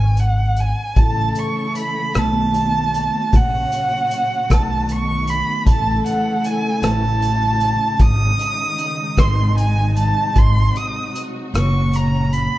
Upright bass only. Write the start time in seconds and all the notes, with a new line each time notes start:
Already playing: G#1
0.96 A1
2.15 B1
3.33 A#1
4.50 B1
5.66 A1
6.82 A1
8.00 G#1
9.17 G#1
10.36 G#1
11.54 F#1